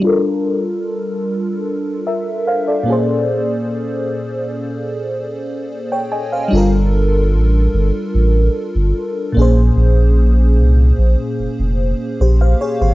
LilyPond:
<<
  \new Staff \with { instrumentName = "FM electric piano" } { \time 4/4 \key bes \lydian \tempo 4 = 74 << { r2 r8 <bes' e''>8 <c'' f''>16 <a' d''>8 r16 | r2. r16 <des'' g''>16 <ees'' aes''>16 <c'' f''>16~ | <c'' f''>16 r2. r8. | r2. <g' c''>16 <c'' f''>16 <aes' des''>16 <g' c''>16 | } \\ { <g d' f' a' bes'>2.~ <g d' f' a' bes'>8 <bes, bes des' aes' c''>8~ | <bes, bes des' aes' c''>2.~ <bes, bes des' aes' c''>8 r8 | <g d' f' a' bes'>2.~ <g d' f' a' bes'>8 <bes, bes des' aes' c''>8~ | <bes, bes des' aes' c''>2.~ <bes, bes des' aes' c''>8 r8 | } >> }
  \new Staff \with { instrumentName = "Sub bass" } { \clef bass \time 4/4 \key bes \lydian r1 | r1 | g,,4 a,,8 g,,16 r16 a,,8 r16 g,,16 r8 bes,,8 | bes,,4 c,8 bes,,16 r16 f,,16 f,,8 r16 bes,,8 r16 aes,,16 | }
>>